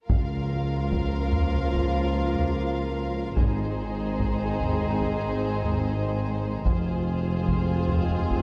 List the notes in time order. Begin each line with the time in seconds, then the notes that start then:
0.08 C#2 F3 A#3 F4 A#4 F5, taiko
0.92 taiko
1.32 taiko low
1.53 taiko low
1.74 taiko
2.35 taiko low
3.37 G#1 G#2 G#3 C4 D#4 G#4 C5, taiko
4.20 taiko
4.61 taiko low
4.82 taiko low
5.02 taiko
5.64 taiko low
6.64 F1 F2 G#3 C4 F4 G#4 C5, taiko
7.48 taiko
7.89 taiko low
8.09 taiko low
8.30 taiko